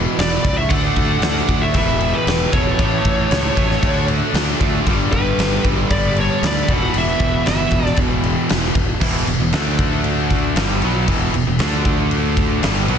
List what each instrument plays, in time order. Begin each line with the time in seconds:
Already playing: overdriven electric guitar E2 B2 E3, distorted electric guitar E2 B2 E3, tonewheel organ E4 B4 F#5
0.18 fingered electric bass E1, lead electric guitar B4 D5, snare, crash
0.44 fingered electric bass C#2, kick, crash
0.58 lead electric guitar C#5 E5
0.69 fingered electric bass D2, overdriven electric guitar D3 A3, tonewheel organ D4 A4 E5, lead electric guitar F#5, kick, crash
0.73 overdriven electric guitar D4, lead electric guitar D5
0.96 fingered electric bass D2, kick, crash
1.21 fingered electric bass D2, lead electric guitar D5 F#5, snare, crash
1.37 snare
1.48 fingered electric bass D2, overdriven electric guitar D3 A3 D4, kick, crash
1.62 lead electric guitar C#5 E5
1.73 fingered electric bass E1, overdriven electric guitar E2 B2, tonewheel organ E4 B4 F#5, lead electric guitar E5, kick, crash
1.77 overdriven electric guitar E3, lead electric guitar B4
2.01 crash
2.15 lead electric guitar G4 B4
2.27 fingered electric bass E1, snare, crash
2.51 fingered electric bass E1, overdriven electric guitar E2 B2 E3, lead electric guitar A4 C#5, kick, crash
2.78 fingered electric bass A1, overdriven electric guitar A2 E3 A3, tonewheel organ A3 E4, kick, crash
3.05 fingered electric bass A1, kick, crash
3.31 fingered electric bass C#2, snare, crash
3.55 fingered electric bass A1, overdriven electric guitar A2 E3 A3, kick, crash
3.71 snare
3.81 fingered electric bass D2, overdriven electric guitar D3 A3, tonewheel organ D4 E5, kick, crash
3.85 overdriven electric guitar D4, tonewheel organ A4
4.08 crash
4.34 fingered electric bass D2, snare, crash
4.60 fingered electric bass D2, overdriven electric guitar D3 A3 D4, kick, crash
4.86 fingered electric bass G1, overdriven electric guitar G2 D3, tonewheel organ G3, kick, crash
4.91 overdriven electric guitar G3
5.12 fingered electric bass G1, lead electric guitar G4 B4, kick, crash
5.38 fingered electric bass G1, snare, crash
5.64 fingered electric bass G1, overdriven electric guitar D3 G3, kick, crash
5.68 overdriven electric guitar G2
5.90 fingered electric bass G1, lead electric guitar B4 D5, kick, crash
6.16 lead electric guitar A4 C#5, crash
6.42 fingered electric bass D2, lead electric guitar B4, snare, crash
6.46 lead electric guitar D5
6.68 fingered electric bass E1, overdriven electric guitar E2 B2 E3, tonewheel organ E3 B3 F#4, kick, crash
6.73 lead electric guitar B4 F#5
6.94 fingered electric bass E1, lead electric guitar B4 E5, crash
7.19 fingered electric bass E1, kick, crash
7.45 fingered electric bass G1, overdriven electric guitar E2 B2 E3, lead electric guitar E5, snare, crash
7.49 lead electric guitar B4
7.71 fingered electric bass E1, kick, crash
7.86 snare
7.96 fingered electric bass E1, kick, crash
8.23 crash
8.49 fingered electric bass E1, snare, crash
8.75 fingered electric bass E1, kick, crash
9.00 fingered electric bass E1, overdriven electric guitar E2 B2 E3, kick, crash
9.27 fingered electric bass E1, overdriven electric guitar E2 B2, crash
9.39 fingered electric bass E1, overdriven electric guitar E2 B2
9.53 fingered electric bass D2, overdriven electric guitar D3 A3 D4, snare, crash
9.79 kick, crash
10.04 crash
10.30 kick, crash
10.55 fingered electric bass G1, overdriven electric guitar G2 D3 G3, snare, crash
10.82 fingered electric bass B1, overdriven electric guitar B2 F#3 B3, crash
11.07 fingered electric bass E1, overdriven electric guitar E2 B2 E3, kick, crash
11.34 fingered electric bass E1, overdriven electric guitar E2 B2, crash
11.47 fingered electric bass E1, overdriven electric guitar E2 B2
11.59 fingered electric bass D2, overdriven electric guitar D3 A3 D4, snare, crash
11.85 kick, crash
12.11 crash
12.37 kick, crash
12.62 fingered electric bass G1, overdriven electric guitar G2 D3 G3, snare, crash
12.87 fingered electric bass B1, overdriven electric guitar B2 F#3 B3, crash